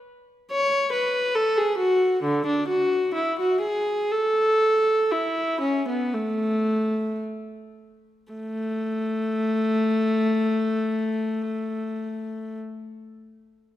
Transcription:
viola
0.51 C#5
0.93 B4
1.35 A4
1.57 G#4
1.78 F#4
2.23 D3
2.47 D4
2.69 F#4
3.15 E4
3.40 F#4
3.61 G#4
4.11 A4
5.12 E4
5.61 C#4
5.89 B3
6.14 A3
8.32 A3

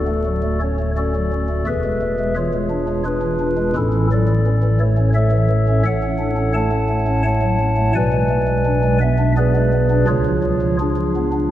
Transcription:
pipe organ
Already playing: D1 D2 F#4 A4 D5
0.08 A3
0.26 F#3
0.43 A3
0.61 C#4 C#5
0.80 A3
0.97 C#4 F#4 A4 D5
1.15 F#3
1.32 C#4
1.50 A3
1.67 E1 E2 G#4 B4 E5
1.84 G#3
2.02 A3
2.19 G#3
2.36 E3 F4 G#4 C#5
2.54 G#3
2.70 D4
2.88 G#3
3.05 D4 F4 G#4 B4
3.23 E3
3.40 D4
3.57 G#3
3.76 A1 A2 C#4 E4 A4
3.94 E3
4.12 F#3 A4 D5
4.29 E3
4.46 C#4
4.63 E3
4.80 A3 C#5
4.98 C#4
5.15 A3 A4 C#5 E5
5.32 E3
5.50 A3
5.68 C#4
5.85 A1 A2 A4 C#5 F#5
6.03 C#4
6.19 D4
6.37 C#4
6.54 A3 C#5 F#5 A5
6.72 C#4
6.90 A3
7.07 C#4
7.25 A3 C#5 F#5 A5
7.42 F#3
7.59 C#4
7.77 A3
7.95 B1 B2 B4 D5 G#5
8.13 G#3
8.30 A3
8.47 G#3
8.66 D4
8.84 G#3
9.01 B3 E5
9.19 D4
9.37 B3 G#4 B4 D5
9.56 G#3
9.73 B3
9.90 D4
10.08 C#2 C#3 F4 G#4 C#5
10.26 F3
10.43 F#3
10.62 F3
10.80 D4 F4 G#4
10.98 F3
11.16 B3
11.33 D4

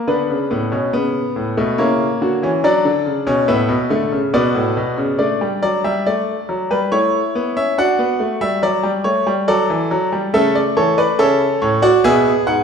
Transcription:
grand piano
0.07 D3 B3 D4 B4
0.30 C#3
0.51 A2 B3
0.72 B2 C#4
0.93 C#3 B3
1.36 A2
1.57 B2 A3
1.78 C#3 A#3 E4 C#5
2.22 D3 F#4
2.43 E3 C#4
2.64 F#3 D4 D5
2.85 D3
3.06 C#3
3.27 B2 C#4
3.48 A2 B3 E5
3.69 B2
3.90 D3 A3
4.12 C#3
4.34 B2 B3 F#4 D5
4.55 A2
4.77 B2
4.98 C#3
5.19 A3 D4 D5
5.41 G3
5.62 F#3 D5
5.84 G3 E5
6.06 A3 D5
6.49 F#3
6.71 G3 B4
6.92 A3 E4 C#5
7.35 B3
7.57 C#4 E5
7.78 D4 F#4 F#5
7.99 B3
8.20 A3
8.41 G3 E5
8.63 F#3 D5
8.83 G3
9.04 A3 C#5
9.27 G3
9.48 F#3 A4 D5
9.70 E3
9.91 F#3
10.12 G3
10.34 C#3 A3 A4 E5
10.55 D5
10.77 E3 A4 C#5
10.98 B4 D5
11.19 C#3 C#4 A4 E5
11.62 A2 C#5
11.82 F#4 D5
12.04 B2 B3 G#4 E5
12.47 G#2 F#5

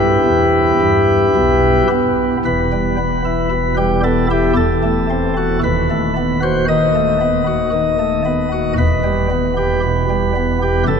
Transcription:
pipe organ
Already playing: G2 E4 G4 B4
0.26 E2
0.81 G2
1.35 B1 B2
1.91 B3
2.45 E1 E2 B4
2.72 G3
2.98 B3
3.25 E4
3.51 B2
3.77 G3 G4
4.04 B3 A4
4.31 E4 G4
4.56 E1 E2 A4
4.83 A3
5.10 C4
5.37 F#4
5.63 D#1 D#2 B4
5.90 A3
6.17 B3
6.43 F#4 C5
6.68 D#3 D#5
6.95 A3
7.21 B3
7.47 F#4
7.72 D#3
7.99 A3
8.25 B3
8.52 F#4
8.78 E1 E2 B4
9.04 G3
9.30 B3
9.57 G4
9.83 B2
10.10 G3
10.36 B3
10.62 G4
10.88 F#1 F#2 A4

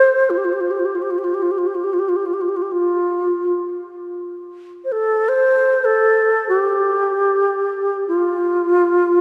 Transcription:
xiao
Already playing: C5
0.30 F4
0.37 G4
0.45 F4
0.53 G4
0.61 F4
0.71 G4
0.80 F4
0.85 G4
0.95 F4
1.02 G4
1.10 F4
1.18 G4
1.24 F4
1.34 G4
1.42 F4
1.51 G4
1.58 F4
1.67 G4
1.75 F4
1.84 G4
1.93 F4
1.99 G4
2.09 F4
2.16 G4
2.26 F4
2.34 G4
2.41 F4
2.49 G4
2.57 F4
2.62 G4
2.72 F4
4.85 C5
4.92 A4
5.29 C5
5.85 A4
6.49 G4
8.08 F4

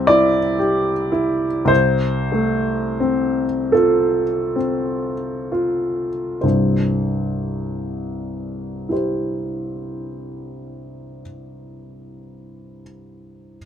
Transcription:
upright piano
Already playing: C2 G3 C4 E5
0.07 E4 D5
0.59 G4
1.12 E4
1.65 C2 C5
2.32 A3
3.00 C4
3.72 F4 A4
4.56 C4
5.52 F4
6.41 C2 G2 C5
8.89 E4 G4 C5

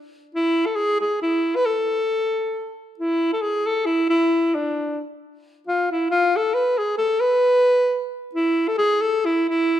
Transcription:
alto saxophone
0.35 E4
0.66 A4
0.76 G#4
1.01 G#4
1.22 E4
1.55 B4
1.66 A4
3.00 E4
3.33 A4
3.42 G#4
3.67 A4
3.86 E4
4.10 E4
4.55 D4
5.67 F4
5.92 E4
6.11 F4
6.37 A4
6.54 B4
6.78 G#4
6.98 A4
7.20 B4
8.35 E4
8.68 A4
8.78 G#4
9.02 A4
9.25 E4
9.49 E4

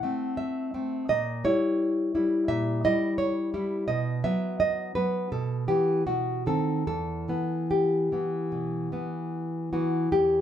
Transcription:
nylon-string guitar
Already playing: F#5
0.03 A3 C4
0.37 E5
0.74 A3 C4
1.09 A#2 D#5
1.44 G3 E4 C#5
2.15 G3 E4
2.48 A#2 E5
2.85 G3 E4 D#5
3.18 C#5
3.54 G3 E4
3.88 B2 D#5
4.24 F#3 B3 E5
4.60 D#5
4.95 F#3 B3 B4
5.32 B2 A4
5.68 E3 B3 G4
6.07 B2 F#4
6.46 D#3 C4 A4
6.87 E2 A4
7.28 E3 B3
7.71 G4
8.12 E3 B3
8.52 B2
8.92 E3 B3
9.73 E3 B3 F#4
10.12 E2 G4

